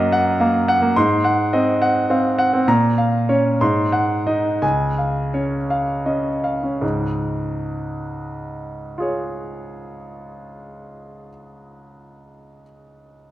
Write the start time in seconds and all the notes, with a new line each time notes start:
Already playing: F#2 A#3 D#5 F#5 A#5
0.12 F#5
0.40 A#3 F5
0.68 F#5
0.82 A#3
0.96 G#2 C6
1.24 F#5
1.53 C4 D#5
1.82 F#5
2.10 C4 F5
2.39 F#5
2.54 C4
2.68 A#2 A#5
2.98 F5
3.29 C#4 C#5
3.61 G#2 C6
3.92 F#5
4.27 D#4 D#5
4.62 C#2 G#5
4.98 F5
5.34 C#4 C#5
5.70 F5
6.06 C#4 D#5
6.44 F5
6.63 C#4
6.81 C#2 G#2
8.98 F4 G#4
9.02 C#5